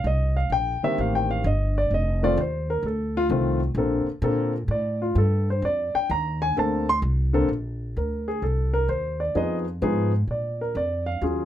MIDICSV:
0, 0, Header, 1, 4, 480
1, 0, Start_track
1, 0, Key_signature, -2, "major"
1, 0, Tempo, 465477
1, 43, Time_signature, 4, 2, 24, 8
1, 11807, End_track
2, 0, Start_track
2, 0, Title_t, "Grand piano"
2, 0, Program_c, 0, 0
2, 69, Note_on_c, 0, 75, 84
2, 373, Note_off_c, 0, 75, 0
2, 376, Note_on_c, 0, 77, 79
2, 523, Note_off_c, 0, 77, 0
2, 541, Note_on_c, 0, 79, 94
2, 848, Note_off_c, 0, 79, 0
2, 859, Note_on_c, 0, 58, 54
2, 862, Note_on_c, 0, 51, 64
2, 865, Note_on_c, 0, 60, 59
2, 869, Note_on_c, 0, 76, 87
2, 870, Note_on_c, 0, 67, 67
2, 1010, Note_off_c, 0, 76, 0
2, 1035, Note_on_c, 0, 77, 72
2, 1176, Note_off_c, 0, 77, 0
2, 1189, Note_on_c, 0, 79, 83
2, 1332, Note_off_c, 0, 79, 0
2, 1347, Note_on_c, 0, 77, 79
2, 1459, Note_off_c, 0, 58, 0
2, 1460, Note_off_c, 0, 51, 0
2, 1461, Note_off_c, 0, 60, 0
2, 1464, Note_off_c, 0, 67, 0
2, 1492, Note_off_c, 0, 77, 0
2, 1512, Note_on_c, 0, 75, 80
2, 1815, Note_off_c, 0, 75, 0
2, 1834, Note_on_c, 0, 74, 77
2, 1972, Note_off_c, 0, 74, 0
2, 2003, Note_on_c, 0, 75, 85
2, 2300, Note_off_c, 0, 75, 0
2, 2300, Note_on_c, 0, 51, 67
2, 2306, Note_on_c, 0, 57, 68
2, 2309, Note_on_c, 0, 74, 93
2, 2310, Note_on_c, 0, 60, 68
2, 2314, Note_on_c, 0, 65, 82
2, 2434, Note_off_c, 0, 51, 0
2, 2438, Note_off_c, 0, 57, 0
2, 2439, Note_off_c, 0, 60, 0
2, 2441, Note_off_c, 0, 65, 0
2, 2450, Note_off_c, 0, 74, 0
2, 2480, Note_on_c, 0, 72, 70
2, 2779, Note_off_c, 0, 72, 0
2, 2784, Note_on_c, 0, 70, 81
2, 2928, Note_off_c, 0, 70, 0
2, 2953, Note_on_c, 0, 69, 61
2, 3255, Note_off_c, 0, 69, 0
2, 3270, Note_on_c, 0, 65, 101
2, 3357, Note_off_c, 0, 65, 0
2, 3410, Note_on_c, 0, 51, 65
2, 3410, Note_on_c, 0, 57, 62
2, 3419, Note_on_c, 0, 60, 66
2, 3419, Note_on_c, 0, 65, 82
2, 3701, Note_off_c, 0, 51, 0
2, 3701, Note_off_c, 0, 57, 0
2, 3705, Note_off_c, 0, 60, 0
2, 3706, Note_off_c, 0, 65, 0
2, 3890, Note_on_c, 0, 50, 67
2, 3893, Note_on_c, 0, 60, 60
2, 3895, Note_on_c, 0, 58, 64
2, 3895, Note_on_c, 0, 69, 67
2, 4181, Note_off_c, 0, 50, 0
2, 4182, Note_off_c, 0, 60, 0
2, 4183, Note_off_c, 0, 58, 0
2, 4183, Note_off_c, 0, 69, 0
2, 4362, Note_on_c, 0, 50, 73
2, 4368, Note_on_c, 0, 58, 64
2, 4370, Note_on_c, 0, 69, 76
2, 4371, Note_on_c, 0, 60, 65
2, 4657, Note_off_c, 0, 50, 0
2, 4659, Note_off_c, 0, 58, 0
2, 4661, Note_off_c, 0, 60, 0
2, 4661, Note_off_c, 0, 69, 0
2, 4858, Note_on_c, 0, 74, 71
2, 5168, Note_off_c, 0, 74, 0
2, 5174, Note_on_c, 0, 65, 74
2, 5322, Note_off_c, 0, 65, 0
2, 5342, Note_on_c, 0, 69, 77
2, 5650, Note_off_c, 0, 69, 0
2, 5674, Note_on_c, 0, 72, 71
2, 5813, Note_off_c, 0, 72, 0
2, 5826, Note_on_c, 0, 74, 82
2, 6132, Note_off_c, 0, 74, 0
2, 6136, Note_on_c, 0, 79, 90
2, 6283, Note_off_c, 0, 79, 0
2, 6301, Note_on_c, 0, 82, 93
2, 6609, Note_off_c, 0, 82, 0
2, 6618, Note_on_c, 0, 80, 95
2, 6764, Note_off_c, 0, 80, 0
2, 6771, Note_on_c, 0, 50, 65
2, 6778, Note_on_c, 0, 58, 58
2, 6779, Note_on_c, 0, 60, 62
2, 6782, Note_on_c, 0, 69, 68
2, 6796, Note_on_c, 0, 81, 86
2, 7061, Note_off_c, 0, 50, 0
2, 7064, Note_off_c, 0, 58, 0
2, 7065, Note_off_c, 0, 60, 0
2, 7066, Note_off_c, 0, 69, 0
2, 7096, Note_off_c, 0, 81, 0
2, 7108, Note_on_c, 0, 84, 112
2, 7196, Note_off_c, 0, 84, 0
2, 7562, Note_on_c, 0, 50, 80
2, 7569, Note_on_c, 0, 58, 73
2, 7570, Note_on_c, 0, 60, 71
2, 7572, Note_on_c, 0, 69, 82
2, 7705, Note_off_c, 0, 50, 0
2, 7709, Note_off_c, 0, 58, 0
2, 7709, Note_off_c, 0, 60, 0
2, 7710, Note_off_c, 0, 69, 0
2, 8224, Note_on_c, 0, 70, 57
2, 8530, Note_off_c, 0, 70, 0
2, 8537, Note_on_c, 0, 68, 75
2, 8684, Note_off_c, 0, 68, 0
2, 8692, Note_on_c, 0, 69, 64
2, 9004, Note_off_c, 0, 69, 0
2, 9007, Note_on_c, 0, 70, 86
2, 9159, Note_off_c, 0, 70, 0
2, 9168, Note_on_c, 0, 72, 78
2, 9483, Note_off_c, 0, 72, 0
2, 9488, Note_on_c, 0, 74, 70
2, 9639, Note_off_c, 0, 74, 0
2, 9644, Note_on_c, 0, 53, 57
2, 9649, Note_on_c, 0, 63, 51
2, 9651, Note_on_c, 0, 68, 62
2, 9654, Note_on_c, 0, 59, 52
2, 9665, Note_on_c, 0, 75, 83
2, 9854, Note_off_c, 0, 75, 0
2, 9938, Note_off_c, 0, 53, 0
2, 9940, Note_off_c, 0, 63, 0
2, 9941, Note_off_c, 0, 68, 0
2, 9943, Note_off_c, 0, 59, 0
2, 10127, Note_on_c, 0, 53, 67
2, 10130, Note_on_c, 0, 59, 62
2, 10133, Note_on_c, 0, 63, 63
2, 10140, Note_on_c, 0, 68, 80
2, 10420, Note_off_c, 0, 53, 0
2, 10421, Note_off_c, 0, 59, 0
2, 10423, Note_off_c, 0, 63, 0
2, 10426, Note_off_c, 0, 68, 0
2, 10630, Note_on_c, 0, 74, 62
2, 10935, Note_off_c, 0, 74, 0
2, 10944, Note_on_c, 0, 70, 66
2, 11089, Note_off_c, 0, 70, 0
2, 11105, Note_on_c, 0, 74, 75
2, 11409, Note_on_c, 0, 77, 79
2, 11412, Note_off_c, 0, 74, 0
2, 11561, Note_off_c, 0, 77, 0
2, 11569, Note_on_c, 0, 54, 59
2, 11577, Note_on_c, 0, 61, 52
2, 11580, Note_on_c, 0, 65, 55
2, 11585, Note_on_c, 0, 68, 56
2, 11807, Note_off_c, 0, 54, 0
2, 11807, Note_off_c, 0, 61, 0
2, 11807, Note_off_c, 0, 65, 0
2, 11807, Note_off_c, 0, 68, 0
2, 11807, End_track
3, 0, Start_track
3, 0, Title_t, "Upright bass"
3, 0, Program_c, 1, 32
3, 42, Note_on_c, 1, 36, 82
3, 509, Note_off_c, 1, 36, 0
3, 513, Note_on_c, 1, 34, 80
3, 821, Note_off_c, 1, 34, 0
3, 1013, Note_on_c, 1, 33, 79
3, 1475, Note_off_c, 1, 33, 0
3, 1488, Note_on_c, 1, 31, 97
3, 1952, Note_off_c, 1, 31, 0
3, 1964, Note_on_c, 1, 29, 81
3, 2431, Note_off_c, 1, 29, 0
3, 2447, Note_on_c, 1, 39, 90
3, 2908, Note_off_c, 1, 39, 0
3, 2914, Note_on_c, 1, 38, 81
3, 3385, Note_off_c, 1, 38, 0
3, 3398, Note_on_c, 1, 36, 92
3, 3857, Note_off_c, 1, 36, 0
3, 3863, Note_on_c, 1, 34, 87
3, 4176, Note_off_c, 1, 34, 0
3, 4349, Note_on_c, 1, 46, 100
3, 4819, Note_off_c, 1, 46, 0
3, 4825, Note_on_c, 1, 45, 85
3, 5301, Note_off_c, 1, 45, 0
3, 5314, Note_on_c, 1, 43, 97
3, 5785, Note_off_c, 1, 43, 0
3, 5797, Note_on_c, 1, 41, 84
3, 6103, Note_off_c, 1, 41, 0
3, 6286, Note_on_c, 1, 39, 94
3, 6751, Note_off_c, 1, 39, 0
3, 6775, Note_on_c, 1, 38, 82
3, 7235, Note_off_c, 1, 38, 0
3, 7240, Note_on_c, 1, 36, 91
3, 7708, Note_off_c, 1, 36, 0
3, 7719, Note_on_c, 1, 34, 77
3, 8187, Note_off_c, 1, 34, 0
3, 8214, Note_on_c, 1, 38, 76
3, 8675, Note_off_c, 1, 38, 0
3, 8685, Note_on_c, 1, 36, 72
3, 9151, Note_off_c, 1, 36, 0
3, 9161, Note_on_c, 1, 39, 83
3, 9629, Note_off_c, 1, 39, 0
3, 9642, Note_on_c, 1, 41, 74
3, 10110, Note_off_c, 1, 41, 0
3, 10124, Note_on_c, 1, 44, 91
3, 10591, Note_off_c, 1, 44, 0
3, 10595, Note_on_c, 1, 46, 68
3, 11067, Note_off_c, 1, 46, 0
3, 11084, Note_on_c, 1, 41, 82
3, 11552, Note_off_c, 1, 41, 0
3, 11564, Note_on_c, 1, 39, 78
3, 11807, Note_off_c, 1, 39, 0
3, 11807, End_track
4, 0, Start_track
4, 0, Title_t, "Muted upright bass strokes"
4, 857, Note_on_c, 9, 29, 37
4, 960, Note_off_c, 9, 29, 0
4, 4192, Note_on_c, 9, 29, 41
4, 4295, Note_off_c, 9, 29, 0
4, 6129, Note_on_c, 9, 29, 43
4, 6232, Note_off_c, 9, 29, 0
4, 11807, End_track
0, 0, End_of_file